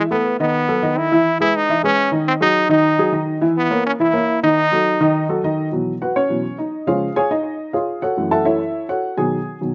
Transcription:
0.11 A3 B3 A4 B4
0.40 D#3 B3 D#4 D#5
0.68 F#3 F#4 A4
0.82 D#3 D#4 D#5
0.97 E4
1.12 E3 E4 E5
1.40 G#3 E4 G#4 B4
1.56 D#4
1.69 E3 E4 E5
1.83 G#3 C#4 G#4 B4
2.12 D#3 D#4 D#5
2.28 C4
2.41 F#3 D#4 F#4 G#4
2.69 D#3 D#4 D#5
2.98 F#3 F#4 G#4
3.12 D#3 D#4 D#5
3.41 E3 E4 E5
3.57 B3
3.70 A#3 A#4 C#5
3.86 C#4
4.00 E3 E4 E5
4.13 A#3 A#4 C#5
4.43 D#3 D#4 D#5
4.72 F#3 F#4 A4
5.00 D#3 D#4 D#5
5.29 F#3 F#4 A4
5.44 D#3 D#4 D#5
5.72 B2 E3 F#3
6.02 F#4 B4 F#5
6.16 C#4 C#5
6.29 B2 E3 F#3
6.58 D#4 D#5
6.87 C#3 F3 G#3 F4 G#4 C#5 F5
7.16 G#4 C#5 F5 G#5
7.31 D#4 D#5
7.73 F4 G#4 C#5 F5
8.02 F#4 A4 C#5 F#5
8.17 F#2 E3 A3
8.31 A4 E5 F#5 A5
8.45 E4 A4 C#5 E5
8.89 F#4 A4 C#5 F#5
9.17 B2 D#3 F#3 G#4 G#5
9.61 B2 D#3 F#3

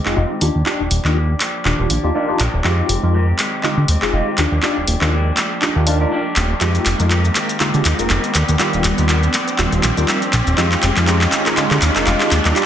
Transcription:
Already playing: riser
0.05 F1 G#3 C4 D#4 F4 G4 G#4, clap
0.16 F1 D#3 G#3 C4 D#4 F4 G4
0.41 D#2 F3 A#3 D4 D#4 F4 G4, open hi-hat
0.55 D#2
0.66 F3 A#3 D4 D#4 F4 G4, clap
0.80 D#1
0.91 D#1, open hi-hat
1.04 D#2 A#3 D4 D#4 F4 G4, clap
1.15 F3 A#3 D4 G4
1.29 A#3 D4 G4
1.40 F3 A#3 D4 G4, clap, open hi-hat
1.65 D#1 D#3 D4 F4 G4, clap
1.79 D#1 A#3 D4 G4
1.90 A#1 F3 A#3 D4 G4, open hi-hat
2.03 D#2 A#3 D4 D#4 F4 G4
2.14 F3 A#3 D4 D#4 F4 G4 A#4
2.28 D4 D#4 F4 G4
2.39 A#1 F3 A#3 D4 G4, clap, open hi-hat
2.54 D#1
2.64 F2 D#3 G#3 C4 D#4 F4 G4, clap
2.89 F1, open hi-hat
3.03 F2 G#3 C4 D#4 F4 G4 A#4
3.14 D#3 G#3 C4 G4
3.27 G#3 C4 G4
3.38 D#3 G#3 C4 G4, clap, open hi-hat
3.63 D3 G#3 D#4 F4 G4, clap
3.77 D3 G#3 C4 G4
3.88 D#2 D#3 G#3 C4 G4, open hi-hat
4.02 F1 G#3 C4 D#4 F4 G4 G#4, clap
4.13 F1 D#3 G#3 C4 D#4 F4 G4
4.37 D#2 F3 A#3 D4 D#4 F4 G4, clap, open hi-hat
4.52 D#2
4.62 F3 A#3 D4 D#4 F4 G4, clap
4.77 D#1
4.87 D#1, open hi-hat
5.01 D#2 A#3 D4 D#4 F4 G4, clap
5.12 F3 A#3 D4 G4
5.37 F3 A#3 D4 G4, clap, open hi-hat
5.61 D4 D#4 F4 G4, clap
5.75 D#2 A#3 D4 G4
5.86 F3 A#3 D4 D#4 F4 G4 A#4, open hi-hat
6.00 A#3 D4 D#4 F4 G4 A#4
6.11 F3 A#3 D4 G4
6.36 D#1 F3 A#3 D4 G4, clap, open hi-hat
6.61 F2 D#3 G#3 C4 D#4 F4 G4, clap, closed hi-hat, shaker
6.75 closed hi-hat, shaker
6.86 F1, clap, open hi-hat, shaker
6.99 F2 G#3 C4 D#4 F4 G4 A#4, closed hi-hat, shaker
7.10 D#3 G#3 C4 G4, clap, closed hi-hat, shaker
7.25 shaker
7.35 D#3 G#3 C4 G4, clap, open hi-hat, shaker
7.49 closed hi-hat, shaker
7.60 D3 G#3 D#4 F4 G4, clap, closed hi-hat, shaker
7.73 D3 G#3 C4 G4, closed hi-hat, shaker
7.84 D#2 D#3 G#3 C4 G4, clap, open hi-hat, shaker
7.98 F1 G#3 C4 D#4 F4 G4 A#4, closed hi-hat, shaker
8.10 F1 D#3 G#3 C4 G4, clap, closed hi-hat, shaker
8.24 closed hi-hat, shaker
8.34 D#2 F3 A#3 D4 G4, clap, open hi-hat, shaker
8.49 D#2, closed hi-hat, shaker
8.59 D#3 F3 G3 A#3 D4 F4 G4, clap, closed hi-hat, shaker
8.73 D#1, closed hi-hat, shaker
8.84 D#1, clap, open hi-hat, shaker
8.97 D#2 G3 A#3 D4 D#4 F4 G4 A#4, closed hi-hat, shaker
9.09 F3 A#3 D4 G4, clap, closed hi-hat, shaker
9.23 shaker
9.33 F3 A#3 D4 G4, clap, open hi-hat, shaker
9.48 closed hi-hat, shaker
9.58 D#1 D#3 G3 F4 G4, clap, closed hi-hat, shaker
9.72 D#1 A#3 D4 G4, closed hi-hat, shaker
9.83 A#1 F3 A#3 D4 G4, clap, open hi-hat, shaker
9.97 D#2 G3 A#3 D4 D#4 F4 G4 A#4, closed hi-hat, shaker
10.08 F3 A#3 D4 G4, clap, closed hi-hat, shaker
10.22 closed hi-hat, shaker
10.32 A#1 F3 A#3 D4 G4, clap, open hi-hat, shaker
10.47 D#1, closed hi-hat, shaker
10.57 F2 D#3 G#3 C4 D#4 F4 G4, clap, closed hi-hat, shaker
10.72 clap, closed hi-hat, shaker
10.83 F1, clap, open hi-hat, shaker
10.96 F2 G#3 C4 D#4 F4 G4 A#4, clap, closed hi-hat, shaker
11.07 D#3 G#3 C4 D#4 F4 G4, clap, closed hi-hat, shaker
11.21 G#3 C4 G4, clap, shaker
11.31 D#3 G#3 C4 G4, clap, open hi-hat, shaker
11.45 G#3 D#4 F4 A#4, clap, closed hi-hat, shaker
11.56 D3 G#3 D#4 F4 G4, clap, closed hi-hat, shaker
11.70 D3 G#3 C4 G4, clap, closed hi-hat, shaker
11.81 D#2 D#3 G#3 C4 G4, clap, open hi-hat, shaker
11.95 F1 G#3 C4 D#4 F4 G4 A#4, clap, closed hi-hat, shaker
12.06 F1 D#3 G#3 C4 D#4 F4 G4, clap, closed hi-hat, shaker
12.21 clap, closed hi-hat, shaker
12.31 D#2 F3 A#3 D4 G4, clap, open hi-hat, shaker
12.45 D#2 G3 D#4 F4 A#4, clap, closed hi-hat, shaker
12.55 F3 G3 A#3 D4 D#4 F4 G4, clap, closed hi-hat, shaker

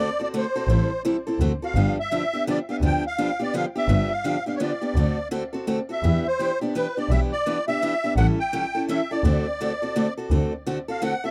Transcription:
Already playing: D5
0.20 C4 F#4 A4 D5
0.34 D3 A3 C4 F#4 A4
0.38 C5
0.56 C4 F#4 A4
0.67 A1 E3 G3 C4 E4 A4
1.05 E3 G3 C4 E4 A4
1.27 C4 E4 A4
1.39 D2 D3 A3 C4 F#4 A4
1.62 C4 F#4 A4 F5
1.75 G1 D3 F3 B3 D4 G4
2.00 E5
2.11 D3 F3 B3 D4 G4
2.33 B3 D4 G4
2.47 D3 F3 B3 D4 G4 D5
2.69 B3 D4 G4 F5
2.81 D2 D3 F3 B3 D4 G4
2.86 G5
3.07 F5
3.18 D3 F3 B3 D4 G4
3.40 B3 D4 G4 D5
3.54 D3 F3 B3 D4 G4 F5
3.75 B3 D4 G4 E5
3.88 G1 D3 F3 B3 D4 G4
4.12 F5
4.24 D3 F3 B3 D4 G4
4.46 B3 D4 G4 F5
4.56 C#5
4.60 D3 F3 B3 D4 G4 D5
4.81 B3 D4 G4
4.95 D2 D3 A3 C4 F#4 A4
5.31 D3 A3 C4 F#4 A4
5.53 C4 F#4 A4
5.67 D3 A3 C4 F#4 A4
5.89 C4 F#4 A4 E5
6.03 E2 E3 B3 D4 G4
6.27 C5
6.39 E3 B3 D4 G4
6.61 B3 D4 G4
6.75 E3 B3 D4 G4 B4
6.97 B3 D4 G4 D5
7.09 B1 E3 B3 D4 G4 E5
7.32 D5
7.46 E3 B3 D4 G4
7.68 B3 D4 G4 E5
7.82 E3 B3 D4 G4
8.04 B3 D4 G4
8.16 A1 E3 G3 C#4 E4 A4 F#5
8.40 G5
8.53 E3 G3 C#4 E4 A4
8.75 C#4 E4 A4
8.88 E3 G3 C#4 E4 A4 E5
9.11 C#4 E4 A4 D5
9.24 D2 D3 A3 C4 F#4 A4
9.61 D3 A3 C4 F#4 A4
9.82 C4 F#4 A4
9.96 D3 A3 C4 F#4 A4
10.17 C4 F#4 A4
10.30 D2 D3 A3 C4 F#4 A4
10.66 D3 A3 C4 F#4 A4
10.88 C4 F#4 A4 F5
11.02 D3 A3 C4 F#4 A4 F#5
11.24 C4 F#4 A4 E5

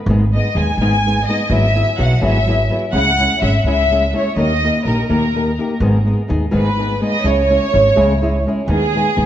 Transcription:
0.06 G#1 G#2 D#3 G#3 B3 D#4
0.10 G#4
0.35 G#3 B3 D#4 G#4 D#5
0.55 D#2 G#3 B3 D#4 G#4 G#5
0.77 G#1 D#3 G#5
0.81 G#2 G#3 B3 D#4 G#4
1.06 G#3 B3 D#4 G#4
1.29 G#3 B3 D#4 G#4 D#5
1.50 G#1 G#2 E3 F#3 B3 E4 G#4 E5
1.75 F#3 B3 E4 G#4
1.98 B1 F#3 B3 E4 G#4 F#5
2.21 G#1 G#2 E3 F#3 B3 E4 G#4 E5
2.47 F#3 B3 E4 G#4
2.70 F#3 B3 E4 G#4
2.93 C#2 C#3 G#3 C#4 E4 G#4 F#5
3.19 G#3 C#4 E4 G#4
3.42 G#1 G#3 C#4 E4 G#4 E5
3.64 C#2 C#3 G#3 C#4 E4 G#4 E5
3.91 G#3 C#4 E4 G#4
4.13 G#3 C#4 E4 G#4
4.17 C#5
4.36 D#2 D#3 A#3 D#4 G4 A#4 D#5
4.63 A#3 D#4 G4 A#4
4.85 A#1 A#3 D#4 G4 A#4
5.09 D#2 D#3 A#3 D#4 G4 A#4
5.35 A#3 D#4 G4 A#4
5.59 A#3 D#4 G4 A#4
5.80 G#1 G#2 D#3 G#3 B3 D#4 G#4
6.05 G#3 B3 D#4 G#4
6.28 D#2 G#3 B3 D#4 G#4
6.51 G#1 G#2 D#3 G#3 B3 D#4 G#4 B4
6.78 G#3 B3 D#4 G#4
7.01 G#3 B3 D#4 G#4
7.06 D#5
7.24 C#2 C#3 G#3 C#4 E4 G#4 C#5
7.49 G#3 C#4 E4 G#4
7.73 G#1 G#3 C#4 E4 G#4
7.96 C#2 C#3 G#3 C#4 E4 G#4
8.22 G#3 C#4 E4 G#4
8.46 G#3 C#4 E4 G#4
8.68 D#2 D#3 G#3 B3 D#4 G#4
8.96 G#3 B3 D#4 G#4
9.16 D#2 G#3 B3 D#4 G#4

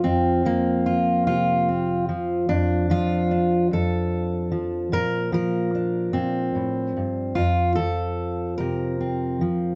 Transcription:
Already playing: F3 F4
0.04 F2 C4
0.45 F3 A#3
0.86 F4
1.27 C3 F4
1.69 C4
2.09 F3
2.49 F2 D4
2.90 F3 F4
3.31 D4
3.71 F2 A4
4.52 F3
4.92 A#2 A#4
5.32 F3 A#4
5.75 D4
6.13 A#2 C4
6.55 A2
6.97 G2
7.35 F2 F4
7.75 F3 A4
8.58 C3 A#4
9.01 C4
9.41 F3

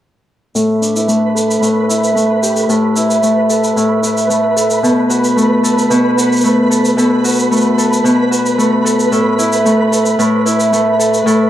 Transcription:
0.54 A2 A4 B4 B5, shaker
0.81 D4, shaker
0.95 E4, shaker
1.08 A3, shaker
1.35 A4, shaker
1.51 shaker
1.62 A2, shaker
1.88 E4, shaker
2.04 shaker
2.15 A3, shaker
2.42 G4, shaker
2.55 A4, shaker
2.69 A2 A4, shaker
2.96 E4, shaker
3.11 shaker
3.23 A3, shaker
3.50 A4, shaker
3.64 shaker
3.76 A2, shaker
4.03 E4, shaker
4.17 shaker
4.29 A3, shaker
4.56 A4, shaker
4.70 shaker
4.83 B2 A4, shaker
5.10 F#4, shaker
5.24 shaker
5.36 A3, shaker
5.63 A4, shaker
5.78 shaker
5.90 B2, shaker
6.17 F#4, shaker
6.32 shaker
6.37 shaker
6.41 A3, shaker
6.45 shaker
6.70 A4, shaker
6.85 shaker
6.97 B2 A4, shaker
7.24 F#4, shaker
7.28 shaker
7.32 shaker
7.35 shaker
7.39 shaker
7.51 A3, shaker
7.57 shaker
7.61 shaker
7.78 A4, shaker
7.93 shaker
8.04 B2, shaker
8.31 F#4, shaker
8.46 shaker
8.58 A3, shaker
8.85 A4, shaker
8.99 shaker
9.12 A2 A4, shaker
9.38 E4, shaker
9.53 shaker
9.65 A3, shaker
9.92 A4, shaker
10.06 shaker
10.19 A2, shaker
10.46 E4, shaker
10.60 shaker
10.72 A3, shaker
10.99 A4, shaker
11.14 shaker
11.26 A2 A4, shaker

